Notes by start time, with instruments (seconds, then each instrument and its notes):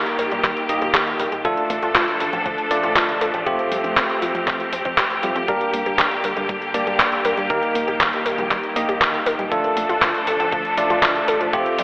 Already playing: string section D#3 G3 A#3 G4, tine electric piano A#3 D#4 G4 A#4
0.06 closed hi-hat
0.19 fingered electric bass A#1, synth arpeggio sound A#4, open hi-hat
0.31 fingered electric bass A#1, synth arpeggio sound G3, closed hi-hat
0.44 fingered electric bass D#2, synth arpeggio sound G3, kick, clap, closed hi-hat
0.57 closed hi-hat
0.69 fingered electric bass A#1, synth arpeggio sound A#3, tine electric piano A#3 D#4 G4 D#5, open hi-hat
0.82 fingered electric bass A#1, synth arpeggio sound G4, closed hi-hat
0.94 fingered electric bass D#2, synth arpeggio sound G4, kick, clap, closed hi-hat
1.07 closed hi-hat
1.20 fingered electric bass A#1, synth arpeggio sound A#4, open hi-hat
1.32 fingered electric bass A#1, synth arpeggio sound G3, closed hi-hat
1.45 fingered electric bass D2, synth arpeggio sound F3, string section F3 A3 D4 A4, tine electric piano A3 D4 F4 A4, kick, closed hi-hat
1.57 closed hi-hat
1.70 fingered electric bass A1, synth arpeggio sound A3, open hi-hat
1.83 fingered electric bass A1, synth arpeggio sound F4, closed hi-hat
1.95 fingered electric bass D2, synth arpeggio sound F4, kick, clap, closed hi-hat
2.08 closed hi-hat
2.20 fingered electric bass A1, synth arpeggio sound A4, open hi-hat
2.33 fingered electric bass A1, synth arpeggio sound F3, closed hi-hat
2.45 fingered electric bass D2, synth arpeggio sound F3, kick, closed hi-hat
2.58 closed hi-hat
2.71 fingered electric bass A1, synth arpeggio sound A3, tine electric piano A3 D4 F4 D5, open hi-hat
2.83 fingered electric bass A1, synth arpeggio sound F4, closed hi-hat
2.96 fingered electric bass D2, synth arpeggio sound F4, kick, clap, closed hi-hat
3.09 closed hi-hat
3.21 fingered electric bass A1, synth arpeggio sound A4, open hi-hat
3.34 fingered electric bass A1, synth arpeggio sound F3, closed hi-hat
3.46 fingered electric bass F1, synth arpeggio sound F3, tine electric piano A3 C4 F4 G4, string section C4 G4, kick, closed hi-hat
3.59 closed hi-hat
3.72 fingered electric bass F2, synth arpeggio sound G3, open hi-hat
3.84 fingered electric bass F2, synth arpeggio sound C4, closed hi-hat
3.97 fingered electric bass F1, synth arpeggio sound C4, kick, clap, closed hi-hat
4.10 closed hi-hat
4.22 fingered electric bass F2, synth arpeggio sound F4, open hi-hat
4.35 fingered electric bass F2, synth arpeggio sound F3, closed hi-hat
4.47 fingered electric bass F1, synth arpeggio sound F3, kick, clap, closed hi-hat
4.60 closed hi-hat
4.72 fingered electric bass F2, synth arpeggio sound C4, open hi-hat
4.85 fingered electric bass F2, synth arpeggio sound C4, kick, closed hi-hat
4.98 fingered electric bass F1, synth arpeggio sound G4, kick, clap, closed hi-hat
5.10 closed hi-hat
5.23 fingered electric bass F2, synth arpeggio sound G3, tine electric piano A3 C4 F4 G4, open hi-hat
5.36 fingered electric bass F2, synth arpeggio sound C4, closed hi-hat
5.48 fingered electric bass G1, string section D3 G3 A#3, synth arpeggio sound G3, tine electric piano A#3 D4 G4 A#4, kick, closed hi-hat
5.61 closed hi-hat
5.74 fingered electric bass G2, synth arpeggio sound A#3, open hi-hat
5.86 fingered electric bass G2, synth arpeggio sound G4, closed hi-hat
5.99 fingered electric bass G1, synth arpeggio sound G4, kick, clap, closed hi-hat
6.11 closed hi-hat
6.24 fingered electric bass G2, synth arpeggio sound A#4, open hi-hat
6.37 fingered electric bass G2, synth arpeggio sound G3, closed hi-hat
6.49 fingered electric bass G1, synth arpeggio sound G3, kick, closed hi-hat
6.62 closed hi-hat
6.74 fingered electric bass G2, tine electric piano A#3 D4 G4 D5, synth arpeggio sound A#3, open hi-hat
6.87 fingered electric bass G2, synth arpeggio sound G4, closed hi-hat
7.00 fingered electric bass G1, synth arpeggio sound G4, kick, clap, closed hi-hat
7.12 closed hi-hat
7.25 fingered electric bass G2, synth arpeggio sound A#4, open hi-hat
7.37 fingered electric bass G2, synth arpeggio sound G3, closed hi-hat
7.50 fingered electric bass D#2, string section D#3, synth arpeggio sound G3, tine electric piano A#3 D#4 G4 A#4, kick, closed hi-hat
7.63 closed hi-hat
7.75 fingered electric bass A#1, synth arpeggio sound A#3, open hi-hat
7.88 fingered electric bass A#1, synth arpeggio sound G4, closed hi-hat
8.00 fingered electric bass D#2, synth arpeggio sound G4, kick, clap, closed hi-hat
8.13 closed hi-hat
8.26 fingered electric bass A#1, synth arpeggio sound A#4, open hi-hat
8.38 fingered electric bass A#1, synth arpeggio sound G3, closed hi-hat
8.51 fingered electric bass D#2, synth arpeggio sound G3, kick, clap, closed hi-hat
8.64 closed hi-hat
8.76 fingered electric bass A#1, tine electric piano A#3 D#4 G4 D#5, synth arpeggio sound A#3, open hi-hat
8.89 fingered electric bass A#1, synth arpeggio sound G4, closed hi-hat
9.01 fingered electric bass D#2, synth arpeggio sound G4, kick, clap, closed hi-hat
9.14 closed hi-hat
9.26 fingered electric bass A#1, synth arpeggio sound A#4, open hi-hat
9.39 fingered electric bass A#1, synth arpeggio sound G3, closed hi-hat
9.51 fingered electric bass D2, string section F3 A3 D4 A4, synth arpeggio sound F3, tine electric piano A3 D4 F4 A4, kick, closed hi-hat
9.64 closed hi-hat
9.77 fingered electric bass A1, synth arpeggio sound A3, open hi-hat
9.89 fingered electric bass A1, synth arpeggio sound F4, closed hi-hat
10.02 fingered electric bass D2, synth arpeggio sound F4, kick, clap, closed hi-hat
10.15 closed hi-hat
10.27 fingered electric bass A1, synth arpeggio sound A4, open hi-hat
10.40 fingered electric bass A1, synth arpeggio sound F3, closed hi-hat
10.52 fingered electric bass D2, synth arpeggio sound F3, kick, closed hi-hat
10.65 closed hi-hat
10.78 fingered electric bass A1, synth arpeggio sound A3, tine electric piano A3 D4 F4 D5, open hi-hat
10.90 fingered electric bass A1, synth arpeggio sound F4, closed hi-hat
11.03 fingered electric bass D2, synth arpeggio sound F4, kick, clap, closed hi-hat
11.15 closed hi-hat
11.28 fingered electric bass A1, synth arpeggio sound A4, open hi-hat
11.41 fingered electric bass A1, synth arpeggio sound F3, closed hi-hat
11.53 fingered electric bass F1, synth arpeggio sound F3, tine electric piano A3 C4 F4 G4, string section C4 G4, kick, closed hi-hat
11.66 closed hi-hat
11.79 fingered electric bass F2, synth arpeggio sound G3, open hi-hat